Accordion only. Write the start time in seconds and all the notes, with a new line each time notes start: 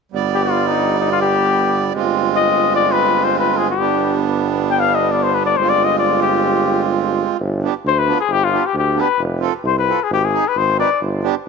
0.12 G3 B3 D5
1.92 G#3 C4
1.96 F4
3.76 G3 B3
3.80 D4
5.58 G#3 C4 F4
7.63 B3 D4 G4
8.07 B3 D4 F4
8.51 B3 D4 G4
8.95 B3 D4 G4
9.40 C4 F4 A4
9.86 C4 F4 A4
10.33 C4 D#4 G#4
10.77 C4 D#4 B4
11.23 B3 D4 G4